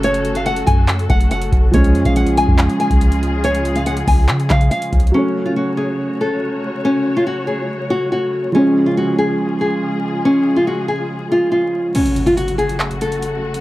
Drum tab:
CC |------------------------------------------------|------------------------------------------------|------------------------------------------------|------------------------------------------------|
HH |x--x--x--x--x--x--x-----x--x--x--x--x--x--x-----|x--x--x--x--x--x--x-----x--x--x--x--x--x--x-----|x--x--x--x--x--x--o-----x--x--x--x--x--x--x-x-x-|------------------------------------------------|
CP |------------------------x-----------------------|------------------------x-----------------------|------------------------x-----x-----------------|------------------------------------------------|
BD |------------------o-----------o-----------o-----|o--------o-----------o-----------o--------------|------------------o-----------o-----------o-----|------------------------------------------------|

CC |------------------------------------------------|------------------------------------------------|------------------------------------------------|x-----------------------------------------------|
HH |------------------------------------------------|------------------------------------------------|------------------------------------------------|x--x--x--x--x--x--x--x--x--x--x--x--x--------x--|
CP |------------------------------------------------|------------------------------------------------|------------------------------------------------|------------------------x-----------------------|
BD |------------------------------------------------|------------------------------------------------|------------------------------------------------|------------------------------------------------|